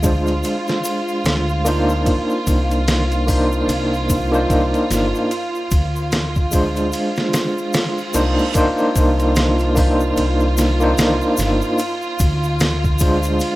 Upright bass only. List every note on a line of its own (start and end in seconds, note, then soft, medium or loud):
0.00 0.41 D2 loud
1.24 2.03 D2 medium
2.47 3.65 C2 loud
3.68 4.46 C2 loud
4.50 4.71 C2 medium
4.90 5.11 G1 medium
5.72 6.90 D2 medium
8.14 8.35 C2 medium
8.96 10.14 C2 loud
10.17 10.95 C2 loud
10.98 11.19 C2 medium
11.38 11.60 G1 medium
12.20 13.38 D2 loud